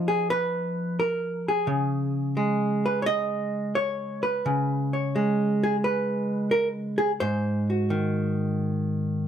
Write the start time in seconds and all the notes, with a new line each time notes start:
Already playing: F3 B3 D#4
0.08 G#4
0.30 B4
1.00 A#4
1.48 G#4
1.67 C#3
2.37 G#3
2.86 B4
3.02 C#5
3.06 D#5
3.75 C#5
4.23 B4
4.46 C#3
4.93 C#5
5.16 G#3
5.63 G#4
5.84 B4
6.51 A#4
6.98 G#4
7.20 G#2 C5
7.70 F#4
7.90 D#3